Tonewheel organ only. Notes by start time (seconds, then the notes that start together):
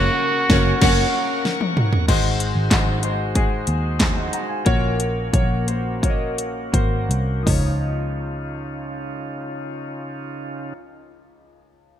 Already playing: A#4 F#5 C#6
2.09 G#3 D#4 F#4 C5
4.66 A#3 C#4
7.46 C#3 C#4 D#4 F4